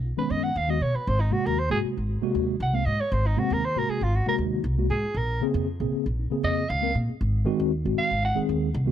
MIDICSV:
0, 0, Header, 1, 5, 480
1, 0, Start_track
1, 0, Tempo, 511509
1, 1001, Time_signature, 4, 2, 24, 8
1, 8368, End_track
2, 0, Start_track
2, 0, Title_t, "Soprano saxophone"
2, 0, Program_c, 0, 64
2, 173, Note_on_c, 0, 71, 76
2, 288, Note_on_c, 0, 75, 81
2, 302, Note_off_c, 0, 71, 0
2, 408, Note_on_c, 0, 78, 79
2, 422, Note_off_c, 0, 75, 0
2, 537, Note_on_c, 0, 77, 85
2, 551, Note_off_c, 0, 78, 0
2, 656, Note_on_c, 0, 75, 78
2, 670, Note_off_c, 0, 77, 0
2, 771, Note_on_c, 0, 73, 80
2, 785, Note_off_c, 0, 75, 0
2, 895, Note_on_c, 0, 71, 75
2, 909, Note_off_c, 0, 73, 0
2, 1017, Note_on_c, 0, 72, 88
2, 1031, Note_off_c, 0, 71, 0
2, 1128, Note_on_c, 0, 63, 64
2, 1142, Note_off_c, 0, 72, 0
2, 1242, Note_on_c, 0, 66, 86
2, 1256, Note_off_c, 0, 63, 0
2, 1371, Note_on_c, 0, 70, 77
2, 1385, Note_off_c, 0, 66, 0
2, 1494, Note_on_c, 0, 72, 79
2, 1508, Note_off_c, 0, 70, 0
2, 1601, Note_off_c, 0, 72, 0
2, 1607, Note_on_c, 0, 68, 88
2, 1676, Note_off_c, 0, 68, 0
2, 2462, Note_on_c, 0, 78, 77
2, 2573, Note_on_c, 0, 77, 81
2, 2587, Note_off_c, 0, 78, 0
2, 2681, Note_on_c, 0, 75, 91
2, 2695, Note_off_c, 0, 77, 0
2, 2820, Note_on_c, 0, 73, 79
2, 2834, Note_off_c, 0, 75, 0
2, 2926, Note_on_c, 0, 72, 83
2, 2940, Note_off_c, 0, 73, 0
2, 3064, Note_on_c, 0, 63, 67
2, 3078, Note_off_c, 0, 72, 0
2, 3177, Note_on_c, 0, 66, 84
2, 3191, Note_off_c, 0, 63, 0
2, 3312, Note_on_c, 0, 70, 84
2, 3326, Note_off_c, 0, 66, 0
2, 3425, Note_on_c, 0, 72, 94
2, 3439, Note_off_c, 0, 70, 0
2, 3553, Note_on_c, 0, 70, 87
2, 3567, Note_off_c, 0, 72, 0
2, 3658, Note_on_c, 0, 68, 79
2, 3672, Note_off_c, 0, 70, 0
2, 3781, Note_on_c, 0, 65, 70
2, 3796, Note_off_c, 0, 68, 0
2, 3900, Note_on_c, 0, 66, 64
2, 3914, Note_off_c, 0, 65, 0
2, 4013, Note_off_c, 0, 66, 0
2, 4018, Note_on_c, 0, 70, 82
2, 4084, Note_off_c, 0, 70, 0
2, 4602, Note_on_c, 0, 68, 78
2, 4853, Note_on_c, 0, 70, 69
2, 4867, Note_off_c, 0, 68, 0
2, 5088, Note_off_c, 0, 70, 0
2, 6043, Note_on_c, 0, 75, 86
2, 6284, Note_on_c, 0, 77, 91
2, 6298, Note_off_c, 0, 75, 0
2, 6524, Note_off_c, 0, 77, 0
2, 7490, Note_on_c, 0, 77, 94
2, 7710, Note_off_c, 0, 77, 0
2, 7739, Note_on_c, 0, 78, 81
2, 7878, Note_off_c, 0, 78, 0
2, 8368, End_track
3, 0, Start_track
3, 0, Title_t, "Tine electric piano"
3, 0, Program_c, 1, 4
3, 35, Note_on_c, 1, 59, 25
3, 48, Note_on_c, 1, 65, 26
3, 98, Note_off_c, 1, 59, 0
3, 105, Note_off_c, 1, 65, 0
3, 159, Note_on_c, 1, 51, 81
3, 164, Note_on_c, 1, 56, 73
3, 168, Note_on_c, 1, 59, 72
3, 176, Note_on_c, 1, 61, 90
3, 463, Note_off_c, 1, 51, 0
3, 465, Note_off_c, 1, 56, 0
3, 467, Note_off_c, 1, 59, 0
3, 471, Note_off_c, 1, 61, 0
3, 639, Note_on_c, 1, 51, 67
3, 644, Note_on_c, 1, 56, 62
3, 651, Note_on_c, 1, 59, 64
3, 657, Note_on_c, 1, 66, 72
3, 715, Note_off_c, 1, 51, 0
3, 718, Note_off_c, 1, 56, 0
3, 721, Note_off_c, 1, 59, 0
3, 724, Note_off_c, 1, 66, 0
3, 877, Note_on_c, 1, 59, 24
3, 890, Note_on_c, 1, 66, 26
3, 937, Note_off_c, 1, 59, 0
3, 943, Note_off_c, 1, 66, 0
3, 1226, Note_on_c, 1, 48, 86
3, 1232, Note_on_c, 1, 56, 79
3, 1239, Note_on_c, 1, 58, 78
3, 1244, Note_on_c, 1, 66, 101
3, 1462, Note_off_c, 1, 48, 0
3, 1465, Note_off_c, 1, 56, 0
3, 1468, Note_off_c, 1, 58, 0
3, 1471, Note_off_c, 1, 66, 0
3, 1591, Note_on_c, 1, 48, 65
3, 1597, Note_on_c, 1, 56, 64
3, 1598, Note_on_c, 1, 58, 61
3, 1605, Note_on_c, 1, 66, 79
3, 1826, Note_off_c, 1, 48, 0
3, 1829, Note_off_c, 1, 56, 0
3, 1830, Note_off_c, 1, 58, 0
3, 1833, Note_off_c, 1, 66, 0
3, 1950, Note_on_c, 1, 58, 27
3, 1964, Note_on_c, 1, 66, 35
3, 2016, Note_off_c, 1, 58, 0
3, 2023, Note_off_c, 1, 66, 0
3, 2080, Note_on_c, 1, 48, 96
3, 2088, Note_on_c, 1, 58, 89
3, 2089, Note_on_c, 1, 56, 91
3, 2094, Note_on_c, 1, 66, 114
3, 2384, Note_off_c, 1, 48, 0
3, 2388, Note_off_c, 1, 56, 0
3, 2388, Note_off_c, 1, 58, 0
3, 2391, Note_off_c, 1, 66, 0
3, 2557, Note_on_c, 1, 48, 74
3, 2562, Note_on_c, 1, 56, 66
3, 2567, Note_on_c, 1, 58, 64
3, 2572, Note_on_c, 1, 60, 76
3, 2635, Note_off_c, 1, 48, 0
3, 2637, Note_off_c, 1, 56, 0
3, 2640, Note_off_c, 1, 58, 0
3, 2642, Note_off_c, 1, 60, 0
3, 2684, Note_on_c, 1, 58, 26
3, 2701, Note_on_c, 1, 66, 30
3, 2744, Note_off_c, 1, 58, 0
3, 2752, Note_off_c, 1, 66, 0
3, 2798, Note_on_c, 1, 58, 25
3, 2815, Note_on_c, 1, 68, 26
3, 2858, Note_off_c, 1, 58, 0
3, 2866, Note_off_c, 1, 68, 0
3, 3157, Note_on_c, 1, 48, 94
3, 3162, Note_on_c, 1, 56, 87
3, 3169, Note_on_c, 1, 58, 78
3, 3175, Note_on_c, 1, 60, 98
3, 3388, Note_off_c, 1, 48, 0
3, 3390, Note_off_c, 1, 56, 0
3, 3394, Note_off_c, 1, 58, 0
3, 3397, Note_off_c, 1, 60, 0
3, 3525, Note_on_c, 1, 48, 69
3, 3532, Note_on_c, 1, 56, 59
3, 3535, Note_on_c, 1, 58, 61
3, 3539, Note_on_c, 1, 66, 75
3, 3754, Note_off_c, 1, 48, 0
3, 3757, Note_off_c, 1, 56, 0
3, 3758, Note_off_c, 1, 58, 0
3, 3760, Note_off_c, 1, 66, 0
3, 3882, Note_on_c, 1, 58, 25
3, 3895, Note_on_c, 1, 65, 28
3, 3943, Note_off_c, 1, 58, 0
3, 3950, Note_off_c, 1, 65, 0
3, 4000, Note_on_c, 1, 48, 78
3, 4002, Note_on_c, 1, 56, 82
3, 4010, Note_on_c, 1, 58, 80
3, 4016, Note_on_c, 1, 66, 88
3, 4305, Note_off_c, 1, 48, 0
3, 4306, Note_off_c, 1, 56, 0
3, 4310, Note_off_c, 1, 58, 0
3, 4312, Note_off_c, 1, 66, 0
3, 4477, Note_on_c, 1, 48, 67
3, 4486, Note_on_c, 1, 56, 67
3, 4491, Note_on_c, 1, 58, 69
3, 4493, Note_on_c, 1, 66, 84
3, 4555, Note_off_c, 1, 48, 0
3, 4560, Note_off_c, 1, 56, 0
3, 4562, Note_off_c, 1, 58, 0
3, 4563, Note_off_c, 1, 66, 0
3, 4592, Note_on_c, 1, 58, 25
3, 4607, Note_on_c, 1, 66, 30
3, 4658, Note_off_c, 1, 58, 0
3, 4665, Note_off_c, 1, 66, 0
3, 4721, Note_on_c, 1, 58, 26
3, 4736, Note_on_c, 1, 65, 29
3, 4780, Note_off_c, 1, 58, 0
3, 4787, Note_off_c, 1, 65, 0
3, 5075, Note_on_c, 1, 49, 96
3, 5081, Note_on_c, 1, 58, 83
3, 5089, Note_on_c, 1, 60, 92
3, 5093, Note_on_c, 1, 68, 106
3, 5307, Note_off_c, 1, 49, 0
3, 5310, Note_off_c, 1, 58, 0
3, 5314, Note_off_c, 1, 60, 0
3, 5316, Note_off_c, 1, 68, 0
3, 5439, Note_on_c, 1, 49, 84
3, 5442, Note_on_c, 1, 58, 74
3, 5449, Note_on_c, 1, 60, 74
3, 5453, Note_on_c, 1, 68, 90
3, 5671, Note_off_c, 1, 49, 0
3, 5672, Note_off_c, 1, 58, 0
3, 5676, Note_off_c, 1, 60, 0
3, 5678, Note_off_c, 1, 68, 0
3, 5798, Note_on_c, 1, 60, 31
3, 5813, Note_on_c, 1, 63, 35
3, 5861, Note_off_c, 1, 60, 0
3, 5869, Note_off_c, 1, 63, 0
3, 5916, Note_on_c, 1, 49, 83
3, 5922, Note_on_c, 1, 58, 80
3, 5929, Note_on_c, 1, 68, 93
3, 5930, Note_on_c, 1, 60, 75
3, 6223, Note_off_c, 1, 49, 0
3, 6225, Note_off_c, 1, 58, 0
3, 6229, Note_off_c, 1, 60, 0
3, 6229, Note_off_c, 1, 68, 0
3, 6395, Note_on_c, 1, 49, 68
3, 6399, Note_on_c, 1, 58, 67
3, 6403, Note_on_c, 1, 60, 67
3, 6410, Note_on_c, 1, 70, 80
3, 6474, Note_off_c, 1, 49, 0
3, 6476, Note_off_c, 1, 58, 0
3, 6478, Note_off_c, 1, 60, 0
3, 6482, Note_off_c, 1, 70, 0
3, 6515, Note_on_c, 1, 60, 26
3, 6529, Note_on_c, 1, 68, 30
3, 6580, Note_off_c, 1, 60, 0
3, 6586, Note_off_c, 1, 68, 0
3, 6642, Note_on_c, 1, 60, 32
3, 6654, Note_on_c, 1, 68, 34
3, 6700, Note_off_c, 1, 60, 0
3, 6706, Note_off_c, 1, 68, 0
3, 6990, Note_on_c, 1, 51, 113
3, 6995, Note_on_c, 1, 56, 112
3, 6999, Note_on_c, 1, 60, 103
3, 7005, Note_on_c, 1, 66, 127
3, 7224, Note_off_c, 1, 51, 0
3, 7227, Note_off_c, 1, 56, 0
3, 7229, Note_off_c, 1, 60, 0
3, 7232, Note_off_c, 1, 66, 0
3, 7364, Note_on_c, 1, 51, 72
3, 7368, Note_on_c, 1, 56, 66
3, 7370, Note_on_c, 1, 60, 60
3, 7375, Note_on_c, 1, 66, 81
3, 7593, Note_off_c, 1, 51, 0
3, 7595, Note_off_c, 1, 56, 0
3, 7596, Note_off_c, 1, 60, 0
3, 7599, Note_off_c, 1, 66, 0
3, 7716, Note_on_c, 1, 60, 26
3, 7730, Note_on_c, 1, 65, 29
3, 7780, Note_off_c, 1, 60, 0
3, 7787, Note_off_c, 1, 65, 0
3, 7834, Note_on_c, 1, 51, 89
3, 7840, Note_on_c, 1, 56, 78
3, 7844, Note_on_c, 1, 60, 86
3, 7846, Note_on_c, 1, 68, 98
3, 8142, Note_off_c, 1, 51, 0
3, 8145, Note_off_c, 1, 56, 0
3, 8147, Note_off_c, 1, 60, 0
3, 8148, Note_off_c, 1, 68, 0
3, 8314, Note_on_c, 1, 51, 83
3, 8322, Note_on_c, 1, 56, 77
3, 8326, Note_on_c, 1, 60, 81
3, 8329, Note_on_c, 1, 66, 92
3, 8368, Note_off_c, 1, 51, 0
3, 8368, Note_off_c, 1, 56, 0
3, 8368, Note_off_c, 1, 60, 0
3, 8368, Note_off_c, 1, 66, 0
3, 8368, End_track
4, 0, Start_track
4, 0, Title_t, "Upright bass"
4, 0, Program_c, 2, 32
4, 0, Note_on_c, 2, 35, 81
4, 135, Note_off_c, 2, 35, 0
4, 283, Note_on_c, 2, 42, 80
4, 494, Note_off_c, 2, 42, 0
4, 521, Note_on_c, 2, 39, 91
4, 733, Note_off_c, 2, 39, 0
4, 759, Note_on_c, 2, 47, 77
4, 871, Note_off_c, 2, 47, 0
4, 1007, Note_on_c, 2, 32, 95
4, 1217, Note_off_c, 2, 32, 0
4, 1374, Note_on_c, 2, 39, 93
4, 1583, Note_off_c, 2, 39, 0
4, 1608, Note_on_c, 2, 32, 81
4, 1709, Note_off_c, 2, 32, 0
4, 1852, Note_on_c, 2, 32, 77
4, 2062, Note_off_c, 2, 32, 0
4, 2201, Note_on_c, 2, 39, 83
4, 2414, Note_off_c, 2, 39, 0
4, 2442, Note_on_c, 2, 36, 95
4, 2654, Note_off_c, 2, 36, 0
4, 2684, Note_on_c, 2, 44, 79
4, 2794, Note_off_c, 2, 44, 0
4, 2924, Note_on_c, 2, 32, 101
4, 3136, Note_off_c, 2, 32, 0
4, 3287, Note_on_c, 2, 39, 98
4, 3500, Note_off_c, 2, 39, 0
4, 3527, Note_on_c, 2, 32, 78
4, 3629, Note_off_c, 2, 32, 0
4, 3763, Note_on_c, 2, 32, 89
4, 3978, Note_off_c, 2, 32, 0
4, 4112, Note_on_c, 2, 39, 88
4, 4329, Note_off_c, 2, 39, 0
4, 4352, Note_on_c, 2, 36, 97
4, 4569, Note_off_c, 2, 36, 0
4, 4595, Note_on_c, 2, 44, 84
4, 4710, Note_off_c, 2, 44, 0
4, 4828, Note_on_c, 2, 34, 93
4, 5047, Note_off_c, 2, 34, 0
4, 5198, Note_on_c, 2, 41, 99
4, 5415, Note_off_c, 2, 41, 0
4, 5442, Note_on_c, 2, 34, 80
4, 5546, Note_off_c, 2, 34, 0
4, 5686, Note_on_c, 2, 34, 86
4, 5899, Note_off_c, 2, 34, 0
4, 6038, Note_on_c, 2, 41, 89
4, 6252, Note_off_c, 2, 41, 0
4, 6285, Note_on_c, 2, 37, 100
4, 6496, Note_off_c, 2, 37, 0
4, 6521, Note_on_c, 2, 46, 85
4, 6633, Note_off_c, 2, 46, 0
4, 6764, Note_on_c, 2, 32, 97
4, 6976, Note_off_c, 2, 32, 0
4, 7128, Note_on_c, 2, 39, 97
4, 7340, Note_off_c, 2, 39, 0
4, 7370, Note_on_c, 2, 32, 83
4, 7470, Note_off_c, 2, 32, 0
4, 7609, Note_on_c, 2, 32, 83
4, 7821, Note_off_c, 2, 32, 0
4, 7967, Note_on_c, 2, 39, 87
4, 8177, Note_off_c, 2, 39, 0
4, 8205, Note_on_c, 2, 36, 98
4, 8368, Note_off_c, 2, 36, 0
4, 8368, End_track
5, 0, Start_track
5, 0, Title_t, "Muted upright bass strokes"
5, 166, Note_on_c, 9, 29, 36
5, 260, Note_off_c, 9, 29, 0
5, 888, Note_on_c, 9, 29, 34
5, 981, Note_off_c, 9, 29, 0
5, 1720, Note_on_c, 9, 29, 35
5, 1813, Note_off_c, 9, 29, 0
5, 2089, Note_on_c, 9, 29, 37
5, 2183, Note_off_c, 9, 29, 0
5, 2812, Note_on_c, 9, 29, 37
5, 2906, Note_off_c, 9, 29, 0
5, 3642, Note_on_c, 9, 29, 37
5, 3736, Note_off_c, 9, 29, 0
5, 4000, Note_on_c, 9, 29, 39
5, 4094, Note_off_c, 9, 29, 0
5, 4716, Note_on_c, 9, 29, 37
5, 4810, Note_off_c, 9, 29, 0
5, 5555, Note_on_c, 9, 29, 39
5, 5649, Note_off_c, 9, 29, 0
5, 5929, Note_on_c, 9, 29, 37
5, 6023, Note_off_c, 9, 29, 0
5, 6654, Note_on_c, 9, 29, 38
5, 6747, Note_off_c, 9, 29, 0
5, 7489, Note_on_c, 9, 29, 36
5, 7583, Note_off_c, 9, 29, 0
5, 7854, Note_on_c, 9, 29, 39
5, 7948, Note_off_c, 9, 29, 0
5, 8368, End_track
0, 0, End_of_file